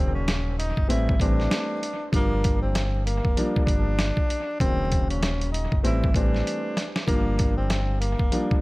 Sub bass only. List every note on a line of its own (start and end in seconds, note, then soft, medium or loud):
0.00 0.73 D#1 loud
0.77 0.88 F#1 medium
0.90 1.17 A1 loud
1.20 1.48 A1 medium
2.13 3.21 G1 loud
3.25 3.35 F1 medium
3.67 4.12 G1 loud
4.60 5.68 D#1 loud
5.72 5.83 F#1 medium
5.84 6.12 A1 loud
6.15 6.42 A1 medium
7.08 8.15 G1 loud
8.20 8.30 F1 medium